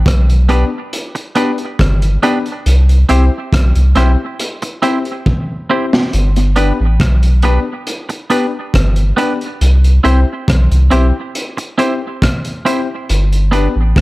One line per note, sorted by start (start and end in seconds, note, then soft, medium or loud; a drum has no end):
0.06 0.64 B1 medium
0.06 kick loud
0.06 cross-stick medium
0.06 closed hi-hat medium
0.30 closed hi-hat medium
0.49 0.67 B3 medium
0.49 0.64 B3 medium
0.49 0.67 D4 medium
0.49 0.64 D4 medium
0.49 0.68 G4 medium
0.49 0.64 G4 medium
0.49 0.68 B4 medium
0.49 0.64 B4 medium
0.49 closed hi-hat medium
0.93 closed hi-hat medium
1.15 muted clean electric guitar stroke soft
1.15 closed hi-hat medium
1.35 1.54 B3 medium
1.35 1.50 B3 medium
1.35 1.54 D4 medium
1.35 1.51 D4 medium
1.35 1.54 G4 medium
1.35 1.51 G4 medium
1.35 1.55 B4 medium
1.35 1.51 B4 medium
1.35 closed hi-hat medium
1.58 1.67 G4 soft
1.58 1.67 B4 soft
1.58 closed hi-hat soft
1.79 2.18 G1 medium
1.79 kick loud
1.79 cross-stick loud
1.79 closed hi-hat medium
2.02 closed hi-hat medium
2.22 2.41 B3 medium
2.22 2.37 B3 medium
2.22 2.41 D4 medium
2.22 2.38 D4 medium
2.22 2.41 G4 medium
2.22 2.38 G4 medium
2.22 2.41 B4 medium
2.22 2.38 B4 medium
2.22 closed hi-hat medium
2.46 closed hi-hat soft
2.66 3.04 C2 loud
2.66 closed hi-hat medium
2.89 closed hi-hat soft
3.09 3.30 C2 medium
3.09 3.27 C4 medium
3.09 3.24 C4 medium
3.09 3.28 E4 medium
3.09 3.24 E4 medium
3.09 3.28 G4 medium
3.09 3.24 G4 medium
3.09 3.28 C5 medium
3.09 3.25 C5 medium
3.09 closed hi-hat medium
3.53 3.73 B1 medium
3.53 kick medium
3.53 cross-stick loud
3.53 closed hi-hat medium
3.75 3.94 C2 medium
3.75 closed hi-hat medium
3.96 4.16 B1 medium
3.96 4.11 C4 medium
3.96 4.14 C4 medium
3.96 4.14 E4 medium
3.96 4.11 E4 medium
3.96 4.15 G4 medium
3.96 4.11 G4 medium
3.96 4.15 C5 medium
3.96 4.11 C5 medium
3.96 cross-stick medium
3.96 closed hi-hat medium
4.40 closed hi-hat medium
4.62 muted clean electric guitar stroke soft
4.62 closed hi-hat medium
4.82 4.97 C4 medium
4.82 5.01 C4 medium
4.82 4.98 E4 medium
4.82 5.01 E4 medium
4.82 4.98 G4 medium
4.82 5.02 G4 medium
4.82 4.98 C5 medium
4.82 5.02 C5 medium
4.82 closed hi-hat medium
5.05 5.14 G4 soft
5.05 5.14 C5 soft
5.05 closed hi-hat soft
5.26 kick loud
5.70 5.88 C4 medium
5.70 5.85 C4 medium
5.70 5.88 E4 medium
5.70 5.85 E4 medium
5.70 5.88 G4 medium
5.70 5.85 G4 medium
5.70 5.89 C5 medium
5.70 5.85 C5 medium
5.93 snare medium
6.13 6.72 G1 loud
6.13 closed hi-hat medium
6.36 closed hi-hat medium
6.56 6.71 B3 medium
6.56 6.75 B3 medium
6.56 6.71 D4 medium
6.56 6.75 D4 medium
6.56 6.72 G4 medium
6.56 6.75 G4 medium
6.56 6.72 B4 loud
6.56 6.76 B4 loud
6.56 closed hi-hat medium
6.80 6.98 A1 medium
7.00 7.59 B1 medium
7.00 kick loud
7.00 cross-stick loud
7.00 closed hi-hat medium
7.23 closed hi-hat medium
7.42 7.58 B3 medium
7.42 7.62 B3 medium
7.42 7.62 D4 medium
7.42 7.59 D4 medium
7.42 7.62 G4 medium
7.42 7.59 G4 medium
7.42 7.62 B4 loud
7.42 7.59 B4 medium
7.42 closed hi-hat medium
7.87 closed hi-hat medium
8.09 muted clean electric guitar stroke soft
8.09 closed hi-hat medium
8.30 8.49 B3 medium
8.30 8.45 B3 medium
8.30 8.49 D4 medium
8.30 8.45 D4 medium
8.30 8.49 G4 medium
8.30 8.46 G4 medium
8.30 8.49 B4 medium
8.30 8.46 B4 medium
8.30 closed hi-hat medium
8.74 9.13 G1 medium
8.74 kick loud
8.74 cross-stick loud
8.74 closed hi-hat loud
8.96 closed hi-hat medium
9.17 9.32 B3 medium
9.17 9.36 B3 medium
9.17 9.36 D4 medium
9.17 9.32 D4 medium
9.17 9.36 G4 medium
9.17 9.33 G4 medium
9.17 9.36 B4 medium
9.17 9.33 B4 medium
9.17 closed hi-hat medium
9.41 closed hi-hat soft
9.61 9.99 C2 loud
9.61 closed hi-hat medium
9.84 closed hi-hat soft
10.04 10.25 C2 medium
10.04 10.19 C4 medium
10.04 10.23 C4 medium
10.04 10.19 E4 medium
10.04 10.23 E4 medium
10.04 10.19 G4 medium
10.04 10.23 G4 medium
10.04 10.23 C5 loud
10.04 10.20 C5 medium
10.04 closed hi-hat medium
10.48 10.68 B1 medium
10.48 kick loud
10.48 cross-stick medium
10.48 closed hi-hat medium
10.71 10.89 C2 medium
10.71 closed hi-hat medium
10.91 11.12 B1 medium
10.91 11.06 C4 medium
10.91 11.10 C4 medium
10.91 11.06 E4 medium
10.91 11.10 E4 medium
10.91 11.06 G4 medium
10.91 11.10 G4 medium
10.91 11.06 C5 medium
10.91 11.10 C5 medium
10.91 closed hi-hat medium
11.35 closed hi-hat medium
11.57 muted clean electric guitar stroke soft
11.57 closed hi-hat medium
11.78 11.93 C4 medium
11.78 11.97 C4 medium
11.78 11.93 E4 medium
11.78 11.97 E4 medium
11.78 11.93 G4 medium
11.78 11.97 G4 medium
11.78 11.94 C5 medium
11.78 11.98 C5 medium
11.78 closed hi-hat medium
12.02 12.10 G4 soft
12.02 12.10 C5 soft
12.22 kick loud
12.22 cross-stick loud
12.22 closed hi-hat medium
12.45 closed hi-hat medium
12.65 12.80 C4 medium
12.65 12.84 C4 medium
12.65 12.80 E4 medium
12.65 12.84 E4 medium
12.65 12.81 G4 medium
12.65 12.85 G4 medium
12.65 12.81 C5 medium
12.65 12.85 C5 medium
12.65 closed hi-hat medium
13.09 13.68 G1 loud
13.09 closed hi-hat medium
13.32 closed hi-hat soft
13.52 13.67 B3 medium
13.52 13.71 B3 medium
13.52 13.67 D4 medium
13.52 13.71 D4 medium
13.52 13.67 G4 medium
13.52 13.72 G4 medium
13.52 13.68 B4 medium
13.52 13.72 B4 loud
13.52 closed hi-hat medium
13.76 13.94 A1 medium
13.96 14.01 B1 medium
13.96 kick loud
13.96 cross-stick loud
13.96 closed hi-hat medium